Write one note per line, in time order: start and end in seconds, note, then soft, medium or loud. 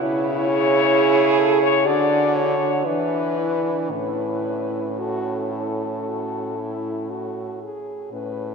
0.00 1.88 C#3 loud
0.00 0.50 E4 loud
0.00 1.88 E4 loud
0.00 1.41 C#5 loud
0.48 1.88 G#4 loud
1.39 1.62 A4 loud
1.63 1.88 C#5 loud
1.86 2.85 D3 loud
1.86 2.86 D4 medium
1.86 2.88 F#4 loud
1.86 2.37 D5 loud
2.35 2.87 C#5 loud
2.86 3.93 E3 medium
2.86 3.39 D4 medium
2.86 3.40 E4 medium
2.86 3.90 B4 loud
3.38 3.93 D4 medium
3.38 3.91 E4 medium
3.91 7.80 A2 medium
3.91 7.62 C#4 medium
3.91 4.86 E4 medium
3.91 5.01 B4 medium
4.98 5.53 F#4 medium
4.98 7.63 A4 medium
5.52 6.05 E4 medium
6.05 6.57 F#4 medium
6.59 7.12 E4 medium
7.10 7.62 F#4 medium
7.62 8.12 G#4 medium
8.13 8.55 A2 medium
8.13 8.55 C#4 medium
8.13 8.55 B4 medium